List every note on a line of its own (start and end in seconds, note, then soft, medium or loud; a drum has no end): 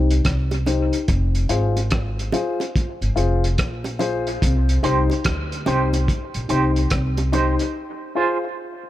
0.00 0.22 C2 medium
0.00 0.10 D#4 medium
0.00 0.10 G4 medium
0.00 0.11 C5 medium
0.10 closed hi-hat medium
0.25 0.89 C2 medium
0.25 kick medium
0.25 cross-stick loud
0.25 closed hi-hat medium
0.51 closed hi-hat soft
0.51 high bongo medium
0.66 0.94 D#4 medium
0.66 0.94 G4 medium
0.66 0.94 C5 medium
0.66 closed hi-hat medium
0.66 low bongo medium
0.93 closed hi-hat soft
1.08 1.47 F1 loud
1.08 kick loud
1.08 closed hi-hat medium
1.35 closed hi-hat medium
1.49 2.29 G#1 medium
1.49 1.77 F4 medium
1.49 1.77 G#4 medium
1.49 1.77 C5 medium
1.49 closed hi-hat medium
1.77 closed hi-hat soft
1.77 high bongo soft
1.91 kick loud
1.91 cross-stick loud
1.91 closed hi-hat medium
1.91 high bongo medium
2.19 closed hi-hat medium
2.32 2.60 F4 medium
2.32 2.61 G#4 medium
2.32 2.61 C5 medium
2.32 closed hi-hat medium
2.32 high bongo medium
2.32 low bongo medium
2.60 closed hi-hat medium
2.60 high bongo medium
2.76 kick medium
2.76 closed hi-hat medium
3.01 3.16 G1 medium
3.01 closed hi-hat soft
3.16 3.55 F1 medium
3.16 3.43 F4 medium
3.16 3.43 G#4 medium
3.16 3.44 C5 medium
3.16 closed hi-hat medium
3.44 closed hi-hat medium
3.58 4.38 A#1 medium
3.58 kick medium
3.58 cross-stick loud
3.58 closed hi-hat medium
3.84 closed hi-hat soft
3.84 high bongo medium
3.99 4.27 F4 medium
3.99 4.27 G#4 medium
3.99 4.27 C5 loud
3.99 closed hi-hat medium
3.99 low bongo medium
4.27 closed hi-hat soft
4.42 4.81 C2 medium
4.42 kick loud
4.42 closed hi-hat loud
4.69 closed hi-hat medium
4.83 5.08 C2 medium
4.83 5.04 D#4 medium
4.83 5.10 D#4 medium
4.83 5.04 G4 medium
4.83 5.10 G4 medium
4.83 5.04 C5 medium
4.83 5.11 C5 medium
4.83 closed hi-hat medium
5.10 closed hi-hat soft
5.10 high bongo soft
5.24 5.64 D2 medium
5.24 kick loud
5.24 cross-stick loud
5.24 closed hi-hat medium
5.24 high bongo medium
5.50 muted clean electric guitar stroke soft
5.50 closed hi-hat medium
5.66 6.05 C2 medium
5.66 5.93 D#4 medium
5.66 5.87 D#4 medium
5.66 5.94 G4 medium
5.66 5.88 G4 medium
5.66 5.94 C5 loud
5.66 5.88 C5 medium
5.66 closed hi-hat medium
5.66 high bongo medium
5.66 low bongo medium
5.93 closed hi-hat medium
5.93 high bongo medium
6.08 kick medium
6.08 closed hi-hat medium
6.34 6.49 A#1 medium
6.34 closed hi-hat medium
6.49 6.89 C2 medium
6.49 6.70 D#4 medium
6.49 6.77 D#4 medium
6.49 6.70 G4 medium
6.49 6.77 G4 medium
6.49 6.71 C5 medium
6.49 6.77 C5 medium
6.49 closed hi-hat medium
6.76 closed hi-hat soft
6.90 7.55 C2 medium
6.90 kick medium
6.90 cross-stick loud
6.90 closed hi-hat medium
7.17 muted clean electric guitar stroke soft
7.17 closed hi-hat soft
7.17 high bongo medium
7.32 7.53 D#4 medium
7.32 7.60 D#4 medium
7.32 7.54 G4 medium
7.32 7.60 G4 medium
7.32 7.54 C5 medium
7.32 7.61 C5 loud
7.32 closed hi-hat medium
7.32 low bongo medium
7.59 closed hi-hat medium
8.15 8.37 F4 medium
8.15 8.43 F4 medium
8.15 8.37 G#4 medium
8.15 8.44 G#4 medium
8.15 8.37 C5 medium
8.15 8.44 C5 medium
8.83 muted clean electric guitar stroke soft